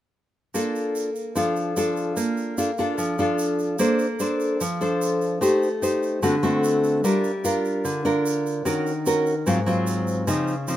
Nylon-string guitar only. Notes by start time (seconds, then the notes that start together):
0.54 A#3 D4 F4 A4
1.35 F3 D4 F4 A4
1.77 D4 F4 A4
2.17 A#3
2.58 D4 F4 A4
2.79 D4 F4 A4
2.98 F3
3.19 D4 F4 A4
3.79 A#3 D4 A4 C5
4.20 D4 A4 C5
4.61 F3
4.81 D4 A4 C5
5.41 A3 D#4 G4 C5
5.82 D#4 G4 C5
6.22 D3 A3 C4 F#4
6.43 A3 C4 F#4
7.04 G3 D4 F4 A#4
7.44 D4 F4 A#4
7.85 D3
8.05 D4 F4 A#4
8.65 D#3 C#4 F#4 A#4
9.06 C#4 F#4 A#4
9.46 G#2 F#3 C4 F4
9.66 F#3 C4 F4
10.27 C#3 F3 C4 D#4
10.68 F3 C4 D#4